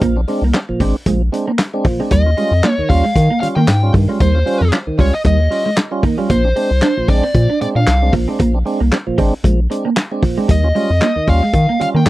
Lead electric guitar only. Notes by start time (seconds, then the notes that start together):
2.12 D#5
2.71 C#5
2.89 F5
3.40 F5
3.56 G5
4.21 C5
5.00 C#5
5.15 D#5
5.26 D#5
6.30 C5
7.09 D5
7.61 D5
7.76 F5
10.51 D#5
11.29 F5
11.82 F5
11.96 G5